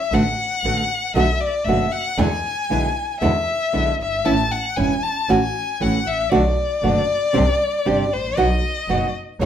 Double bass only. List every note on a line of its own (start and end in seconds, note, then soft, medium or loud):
0.12 0.34 A1 medium
0.63 0.85 A1 medium
1.14 1.37 B1 medium
1.66 1.88 F#1 medium
2.18 2.40 E2 medium
2.70 2.92 B1 medium
3.22 3.44 E2 medium
3.74 3.96 B1 medium
4.00 4.26 G1 soft
4.26 4.48 A1 medium
4.78 5.00 E1 medium
5.29 5.51 A1 medium
5.81 6.03 A1 medium
6.07 6.31 A1 medium
6.32 6.54 B1 medium
6.83 7.05 F#1 medium
7.35 7.57 C2 medium
7.87 8.08 G1 medium
8.13 8.36 A1 medium
8.37 8.59 B1 medium
8.89 9.11 F#1 medium
9.40 9.45 E2 medium